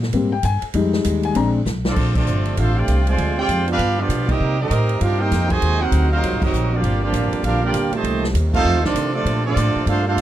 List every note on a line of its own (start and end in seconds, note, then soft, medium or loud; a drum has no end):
0.00 0.13 A#2 loud
0.00 snare medium
0.13 0.43 G#2 medium
0.13 0.30 G3 soft
0.13 0.31 A#3 soft
0.13 0.31 C4 medium
0.13 ride medium
0.32 0.44 G5 medium
0.43 0.61 G2 loud
0.43 0.63 G#5 medium
0.43 hi-hat pedal medium
0.43 ride medium
0.62 muted upright bass stroke soft
0.62 ride medium
0.74 1.04 F2 medium
0.74 1.32 G3 medium
0.74 1.32 G#3 medium
0.74 1.33 D#4 medium
0.74 ride medium
0.93 snare medium
1.04 1.35 D#2 loud
1.04 hi-hat pedal medium
1.04 ride medium
1.23 1.36 G#5 medium
1.23 ride medium
1.35 1.65 A#1 medium
1.35 1.57 G#3 medium
1.35 1.58 C4 soft
1.35 1.58 D4 medium
1.35 1.47 A#5 medium
1.35 ride medium
1.65 1.95 B1 medium
1.65 snare medium
1.65 hi-hat pedal medium
1.85 2.13 F3 medium
1.85 2.13 A3 medium
1.85 2.14 C4 medium
1.85 2.13 D4 medium
1.85 2.14 F4 medium
1.85 2.14 A4 medium
1.85 2.14 D5 medium
1.85 snare medium
1.96 2.26 A#1 medium
1.96 3.17 C3 medium
1.96 3.17 A3 medium
1.96 3.17 C4 medium
1.96 3.17 D4 medium
1.96 kick medium
1.96 crash loud
2.15 2.55 F3 medium
2.15 2.55 A3 medium
2.15 2.55 C4 medium
2.15 2.55 D4 medium
2.15 2.55 F4 medium
2.15 2.55 A4 medium
2.15 2.55 D5 medium
2.15 kick loud
2.15 crash medium
2.27 2.56 G1 loud
2.27 hi-hat pedal medium
2.45 ride medium
2.57 2.87 A1 medium
2.57 2.73 A3 medium
2.57 2.74 D4 medium
2.57 2.77 D4 medium
2.57 2.76 F4 medium
2.57 2.77 A4 medium
2.57 2.77 C5 medium
2.57 2.77 F5 medium
2.57 ride medium
2.75 3.06 A3 medium
2.75 3.06 D4 medium
2.75 3.07 F4 medium
2.75 3.06 G4 medium
2.75 3.07 C5 medium
2.75 3.07 D5 medium
2.75 3.07 G5 medium
2.88 3.17 C2 medium
2.88 hi-hat pedal medium
2.88 ride medium
3.06 3.34 C3 medium
3.06 3.34 F3 medium
3.06 3.34 G#3 medium
3.06 3.36 F4 medium
3.06 3.36 C5 medium
3.06 3.36 D5 medium
3.06 3.35 G#5 medium
3.06 ride medium
3.18 3.47 D2 medium
3.18 3.79 D3 medium
3.18 3.79 G#3 medium
3.18 3.79 C4 medium
3.18 3.79 F4 medium
3.18 ride medium
3.37 3.65 G#3 medium
3.37 3.65 C4 medium
3.37 3.66 F4 medium
3.37 3.65 G4 medium
3.37 3.66 C5 medium
3.37 3.66 D5 medium
3.37 3.66 G5 loud
3.48 3.78 F2 loud
3.48 hi-hat pedal medium
3.48 ride medium
3.67 3.95 B3 medium
3.67 3.96 D4 medium
3.67 3.95 F4 medium
3.67 ride soft
3.71 3.97 D4 medium
3.71 3.97 G4 medium
3.71 3.98 B4 medium
3.71 3.98 F5 loud
3.78 4.08 G2 medium
3.78 4.40 D3 medium
3.78 5.61 G3 medium
3.78 4.40 B3 medium
3.78 4.40 F4 medium
3.78 ride medium
3.97 4.28 F3 medium
3.97 4.28 B3 medium
3.97 4.29 B3 medium
3.97 4.28 D4 medium
3.97 4.30 F4 medium
3.97 4.29 G4 medium
3.97 4.29 D5 medium
4.09 4.39 B2 loud
4.09 hi-hat pedal medium
4.09 ride medium
4.27 4.58 G3 medium
4.27 4.58 A#3 medium
4.27 4.60 C4 medium
4.27 4.58 D#4 medium
4.27 4.60 G4 medium
4.27 4.60 A#4 medium
4.27 4.60 D#5 medium
4.27 kick loud
4.27 crash medium
4.40 4.69 C3 loud
4.40 5.61 C3 medium
4.40 8.62 C4 medium
4.40 5.61 D#4 medium
4.60 4.99 G3 medium
4.60 4.99 C4 medium
4.60 4.99 D#4 medium
4.60 4.99 G4 medium
4.60 4.99 A#4 medium
4.60 4.99 D#5 loud
4.70 5.00 A2 medium
4.70 hi-hat pedal medium
4.70 ride medium
4.89 ride medium
5.01 5.30 G2 loud
5.01 5.20 D4 medium
5.01 5.20 F4 medium
5.01 5.20 G4 medium
5.01 5.18 A#4 medium
5.01 5.20 F5 loud
5.01 ride medium
5.19 5.50 A#3 medium
5.19 5.50 D#4 medium
5.19 5.50 G4 medium
5.19 5.50 A#4 medium
5.19 5.50 C5 medium
5.19 5.50 G5 loud
5.31 5.61 F2 loud
5.31 snare soft
5.31 hi-hat pedal medium
5.31 ride medium
5.50 5.80 C3 medium
5.50 5.81 D#3 medium
5.50 5.80 G#3 medium
5.50 5.81 F#4 medium
5.50 5.81 C5 medium
5.50 5.80 D#5 medium
5.50 5.80 G#5 loud
5.50 kick medium
5.50 ride medium
5.62 5.91 D#2 loud
5.62 6.83 C3 medium
5.62 6.83 F#3 medium
5.62 6.83 G#3 medium
5.62 ride medium
5.81 6.11 C4 medium
5.81 6.11 D#4 medium
5.81 6.11 F#4 medium
5.81 6.11 A#4 medium
5.81 6.11 C5 medium
5.81 6.11 F#5 loud
5.92 6.21 D2 loud
5.92 hi-hat pedal medium
5.92 ride medium
6.12 6.40 F#3 medium
6.12 6.40 C4 medium
6.12 6.39 D#4 medium
6.12 6.40 F4 medium
6.12 6.40 A#4 medium
6.12 6.40 C5 medium
6.12 6.40 F5 loud
6.23 6.34 C2 medium
6.23 ride medium
6.33 6.42 G#1 medium
6.42 6.51 F#1 medium
6.42 6.72 F#3 medium
6.42 6.72 C4 medium
6.42 6.73 C4 medium
6.42 6.72 D#4 medium
6.42 6.73 F#4 medium
6.42 6.73 A#4 medium
6.42 6.73 D#5 medium
6.42 kick loud
6.42 crash medium
6.52 6.82 A#1 medium
6.52 hi-hat pedal medium
6.73 7.02 F3 medium
6.73 7.02 A#3 medium
6.73 7.02 D4 medium
6.73 7.02 F4 medium
6.73 7.03 G4 medium
6.73 7.02 D5 medium
6.82 7.12 G1 medium
6.82 8.03 D3 medium
6.82 8.64 G3 medium
6.82 8.03 F4 medium
6.82 ride medium
7.03 7.42 F3 medium
7.03 7.42 A#3 medium
7.03 7.42 D4 medium
7.03 7.42 F4 medium
7.03 7.42 G4 medium
7.03 7.41 D5 loud
7.12 7.30 A1 medium
7.12 hi-hat pedal medium
7.12 ride medium
7.32 muted upright bass stroke soft
7.32 ride medium
7.43 7.72 A#1 medium
7.43 7.62 A#3 medium
7.43 7.62 D4 medium
7.43 7.62 F4 medium
7.43 7.62 G4 medium
7.43 7.62 A#4 medium
7.43 7.62 F5 loud
7.43 ride medium
7.63 7.91 A#3 medium
7.63 7.91 D4 medium
7.63 7.92 F4 medium
7.63 7.91 G4 medium
7.63 7.92 A#4 medium
7.63 7.92 D5 medium
7.63 7.92 G5 medium
7.73 7.91 D2 medium
7.73 hi-hat pedal medium
7.73 ride medium
7.91 8.24 A#2 medium
7.91 8.24 D#3 medium
7.91 8.24 A3 medium
7.91 muted upright bass stroke soft
7.91 ride medium
7.96 8.25 G4 medium
7.96 8.25 C5 medium
7.96 8.25 D#5 medium
7.96 8.25 A5 loud
8.03 8.33 C2 medium
8.03 10.21 C3 medium
8.03 9.25 D#3 medium
8.03 ride medium
8.24 snare medium
8.34 8.64 D#2 loud
8.34 hi-hat pedal medium
8.34 ride medium
8.53 8.81 A3 loud
8.53 8.82 C4 loud
8.53 8.83 D#4 loud
8.53 8.82 F4 loud
8.53 8.83 A4 loud
8.53 8.83 C5 loud
8.53 8.83 F5 loud
8.53 kick medium
8.53 crash medium
8.65 8.74 F2 medium
8.65 9.26 F3 medium
8.65 9.26 A3 medium
8.74 8.84 D#2 medium
8.83 8.94 C2 medium
8.83 9.12 D#3 medium
8.83 9.12 A3 medium
8.83 9.13 C4 medium
8.83 9.12 D4 medium
8.83 9.13 F4 medium
8.83 9.13 A4 medium
8.83 9.13 D5 loud
8.83 snare medium
8.94 9.25 C3 medium
8.94 hi-hat pedal medium
8.94 ride medium
9.14 9.43 F3 medium
9.14 9.43 A3 medium
9.14 9.43 C4 medium
9.14 9.43 D4 medium
9.14 9.43 F4 medium
9.14 9.43 A4 medium
9.14 9.43 D5 loud
9.25 9.55 A#2 medium
9.25 10.21 A#2 medium
9.25 10.21 A3 medium
9.25 10.21 D4 loud
9.25 ride medium
9.44 9.84 F3 medium
9.44 9.84 A3 medium
9.44 9.85 C4 medium
9.44 9.84 D4 medium
9.44 9.84 F4 medium
9.44 9.85 A4 medium
9.44 9.85 D5 loud
9.56 9.74 A2 loud
9.56 hi-hat pedal medium
9.56 ride medium
9.76 muted upright bass stroke soft
9.86 10.16 G2 loud
9.86 10.05 A3 medium
9.86 10.04 D4 medium
9.86 10.05 D4 medium
9.86 10.04 F4 medium
9.86 10.06 A4 medium
9.86 10.05 C5 medium
9.86 10.05 F5 loud
9.86 ride medium
10.07 10.21 A3 medium
10.07 10.21 D4 loud
10.07 10.21 D4 medium
10.07 10.21 F4 medium
10.07 10.21 A4 medium
10.07 10.21 C5 medium
10.07 10.21 F5 loud
10.17 10.21 F2 loud
10.17 hi-hat pedal medium
10.17 ride medium